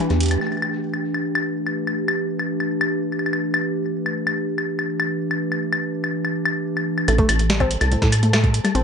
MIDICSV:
0, 0, Header, 1, 6, 480
1, 0, Start_track
1, 0, Tempo, 416667
1, 479, Time_signature, 4, 2, 24, 8
1, 10180, End_track
2, 0, Start_track
2, 0, Title_t, "Synth texture"
2, 0, Program_c, 0, 99
2, 0, Note_on_c, 0, 67, 90
2, 0, Note_on_c, 0, 79, 83
2, 489, Note_off_c, 0, 67, 0
2, 489, Note_off_c, 0, 79, 0
2, 8158, Note_on_c, 0, 81, 86
2, 8159, Note_on_c, 0, 69, 87
2, 10180, Note_off_c, 0, 69, 0
2, 10180, Note_off_c, 0, 81, 0
2, 10180, End_track
3, 0, Start_track
3, 0, Title_t, "Ambient pad"
3, 0, Program_c, 1, 92
3, 0, Note_on_c, 1, 52, 83
3, 0, Note_on_c, 1, 57, 72
3, 0, Note_on_c, 1, 62, 79
3, 0, Note_on_c, 1, 67, 71
3, 0, Note_on_c, 1, 71, 81
3, 8156, Note_off_c, 1, 67, 0
3, 8156, Note_off_c, 1, 71, 0
3, 8157, Note_off_c, 1, 57, 0
3, 8157, Note_off_c, 1, 62, 0
3, 8159, Note_off_c, 1, 52, 0
3, 10180, End_track
4, 0, Start_track
4, 0, Title_t, "Synth arpeggio sound"
4, 0, Program_c, 2, 84
4, 8159, Note_on_c, 2, 57, 88
4, 8252, Note_off_c, 2, 57, 0
4, 8278, Note_on_c, 2, 57, 108
4, 8372, Note_off_c, 2, 57, 0
4, 8639, Note_on_c, 2, 55, 88
4, 8732, Note_off_c, 2, 55, 0
4, 8759, Note_on_c, 2, 60, 111
4, 8815, Note_off_c, 2, 60, 0
4, 9120, Note_on_c, 2, 45, 76
4, 9213, Note_off_c, 2, 45, 0
4, 9240, Note_on_c, 2, 69, 78
4, 9332, Note_off_c, 2, 69, 0
4, 9480, Note_on_c, 2, 57, 78
4, 9573, Note_off_c, 2, 57, 0
4, 9598, Note_on_c, 2, 57, 100
4, 9692, Note_off_c, 2, 57, 0
4, 9958, Note_on_c, 2, 55, 78
4, 10052, Note_off_c, 2, 55, 0
4, 10078, Note_on_c, 2, 60, 107
4, 10134, Note_off_c, 2, 60, 0
4, 10180, End_track
5, 0, Start_track
5, 0, Title_t, "Acid bass"
5, 0, Program_c, 3, 38
5, 119, Note_on_c, 3, 40, 93
5, 434, Note_off_c, 3, 40, 0
5, 8160, Note_on_c, 3, 33, 87
5, 8342, Note_off_c, 3, 33, 0
5, 8399, Note_on_c, 3, 33, 113
5, 8953, Note_off_c, 3, 33, 0
5, 9000, Note_on_c, 3, 36, 93
5, 9183, Note_off_c, 3, 36, 0
5, 9238, Note_on_c, 3, 45, 98
5, 9913, Note_off_c, 3, 45, 0
5, 10080, Note_on_c, 3, 33, 95
5, 10180, Note_off_c, 3, 33, 0
5, 10180, End_track
6, 0, Start_track
6, 0, Title_t, "Drums"
6, 116, Note_on_c, 9, 42, 26
6, 231, Note_off_c, 9, 42, 0
6, 236, Note_on_c, 9, 42, 90
6, 266, Note_off_c, 9, 42, 0
6, 266, Note_on_c, 9, 42, 71
6, 297, Note_off_c, 9, 42, 0
6, 297, Note_on_c, 9, 42, 61
6, 327, Note_off_c, 9, 42, 0
6, 327, Note_on_c, 9, 42, 49
6, 357, Note_off_c, 9, 42, 0
6, 357, Note_on_c, 9, 42, 54
6, 357, Note_on_c, 9, 76, 57
6, 472, Note_off_c, 9, 42, 0
6, 472, Note_off_c, 9, 76, 0
6, 477, Note_on_c, 9, 76, 47
6, 538, Note_off_c, 9, 76, 0
6, 538, Note_on_c, 9, 76, 40
6, 598, Note_off_c, 9, 76, 0
6, 598, Note_on_c, 9, 76, 31
6, 658, Note_off_c, 9, 76, 0
6, 658, Note_on_c, 9, 76, 26
6, 718, Note_off_c, 9, 76, 0
6, 718, Note_on_c, 9, 76, 78
6, 833, Note_off_c, 9, 76, 0
6, 1078, Note_on_c, 9, 76, 46
6, 1193, Note_off_c, 9, 76, 0
6, 1318, Note_on_c, 9, 76, 49
6, 1434, Note_off_c, 9, 76, 0
6, 1558, Note_on_c, 9, 76, 81
6, 1673, Note_off_c, 9, 76, 0
6, 1918, Note_on_c, 9, 76, 49
6, 2034, Note_off_c, 9, 76, 0
6, 2158, Note_on_c, 9, 76, 50
6, 2273, Note_off_c, 9, 76, 0
6, 2399, Note_on_c, 9, 76, 73
6, 2514, Note_off_c, 9, 76, 0
6, 2759, Note_on_c, 9, 76, 47
6, 2874, Note_off_c, 9, 76, 0
6, 2998, Note_on_c, 9, 76, 45
6, 3113, Note_off_c, 9, 76, 0
6, 3237, Note_on_c, 9, 76, 76
6, 3352, Note_off_c, 9, 76, 0
6, 3598, Note_on_c, 9, 76, 22
6, 3678, Note_off_c, 9, 76, 0
6, 3678, Note_on_c, 9, 76, 30
6, 3757, Note_off_c, 9, 76, 0
6, 3757, Note_on_c, 9, 76, 41
6, 3838, Note_off_c, 9, 76, 0
6, 3838, Note_on_c, 9, 76, 50
6, 3953, Note_off_c, 9, 76, 0
6, 4078, Note_on_c, 9, 76, 78
6, 4193, Note_off_c, 9, 76, 0
6, 4677, Note_on_c, 9, 76, 50
6, 4792, Note_off_c, 9, 76, 0
6, 4917, Note_on_c, 9, 76, 67
6, 5032, Note_off_c, 9, 76, 0
6, 5277, Note_on_c, 9, 76, 49
6, 5392, Note_off_c, 9, 76, 0
6, 5516, Note_on_c, 9, 76, 48
6, 5632, Note_off_c, 9, 76, 0
6, 5756, Note_on_c, 9, 76, 69
6, 5871, Note_off_c, 9, 76, 0
6, 6116, Note_on_c, 9, 76, 50
6, 6231, Note_off_c, 9, 76, 0
6, 6356, Note_on_c, 9, 76, 49
6, 6471, Note_off_c, 9, 76, 0
6, 6596, Note_on_c, 9, 76, 69
6, 6711, Note_off_c, 9, 76, 0
6, 6956, Note_on_c, 9, 76, 50
6, 7071, Note_off_c, 9, 76, 0
6, 7196, Note_on_c, 9, 76, 47
6, 7311, Note_off_c, 9, 76, 0
6, 7436, Note_on_c, 9, 76, 71
6, 7551, Note_off_c, 9, 76, 0
6, 7796, Note_on_c, 9, 76, 47
6, 7912, Note_off_c, 9, 76, 0
6, 8037, Note_on_c, 9, 76, 49
6, 8152, Note_off_c, 9, 76, 0
6, 8157, Note_on_c, 9, 42, 56
6, 8157, Note_on_c, 9, 76, 59
6, 8273, Note_off_c, 9, 42, 0
6, 8273, Note_off_c, 9, 76, 0
6, 8276, Note_on_c, 9, 42, 27
6, 8277, Note_on_c, 9, 36, 121
6, 8392, Note_off_c, 9, 36, 0
6, 8392, Note_off_c, 9, 42, 0
6, 8397, Note_on_c, 9, 42, 100
6, 8397, Note_on_c, 9, 76, 84
6, 8512, Note_off_c, 9, 42, 0
6, 8512, Note_off_c, 9, 76, 0
6, 8517, Note_on_c, 9, 42, 55
6, 8633, Note_off_c, 9, 42, 0
6, 8637, Note_on_c, 9, 38, 126
6, 8637, Note_on_c, 9, 42, 59
6, 8752, Note_off_c, 9, 38, 0
6, 8752, Note_off_c, 9, 42, 0
6, 8758, Note_on_c, 9, 36, 103
6, 8758, Note_on_c, 9, 42, 27
6, 8758, Note_on_c, 9, 76, 52
6, 8873, Note_off_c, 9, 36, 0
6, 8873, Note_off_c, 9, 42, 0
6, 8873, Note_off_c, 9, 76, 0
6, 8878, Note_on_c, 9, 42, 98
6, 8993, Note_off_c, 9, 42, 0
6, 8998, Note_on_c, 9, 42, 53
6, 8998, Note_on_c, 9, 76, 80
6, 9113, Note_off_c, 9, 42, 0
6, 9113, Note_off_c, 9, 76, 0
6, 9119, Note_on_c, 9, 42, 56
6, 9234, Note_off_c, 9, 42, 0
6, 9238, Note_on_c, 9, 36, 123
6, 9239, Note_on_c, 9, 38, 66
6, 9239, Note_on_c, 9, 42, 28
6, 9354, Note_off_c, 9, 36, 0
6, 9354, Note_off_c, 9, 38, 0
6, 9354, Note_off_c, 9, 42, 0
6, 9359, Note_on_c, 9, 42, 99
6, 9359, Note_on_c, 9, 76, 53
6, 9359, Note_on_c, 9, 82, 83
6, 9474, Note_off_c, 9, 42, 0
6, 9474, Note_off_c, 9, 76, 0
6, 9474, Note_off_c, 9, 82, 0
6, 9479, Note_on_c, 9, 42, 56
6, 9595, Note_off_c, 9, 42, 0
6, 9600, Note_on_c, 9, 38, 119
6, 9600, Note_on_c, 9, 42, 55
6, 9600, Note_on_c, 9, 76, 80
6, 9715, Note_off_c, 9, 38, 0
6, 9715, Note_off_c, 9, 42, 0
6, 9715, Note_off_c, 9, 76, 0
6, 9719, Note_on_c, 9, 36, 118
6, 9720, Note_on_c, 9, 42, 27
6, 9834, Note_off_c, 9, 36, 0
6, 9836, Note_off_c, 9, 42, 0
6, 9840, Note_on_c, 9, 42, 96
6, 9955, Note_off_c, 9, 42, 0
6, 9960, Note_on_c, 9, 42, 56
6, 9960, Note_on_c, 9, 76, 57
6, 10076, Note_off_c, 9, 42, 0
6, 10076, Note_off_c, 9, 76, 0
6, 10080, Note_on_c, 9, 42, 59
6, 10180, Note_off_c, 9, 42, 0
6, 10180, End_track
0, 0, End_of_file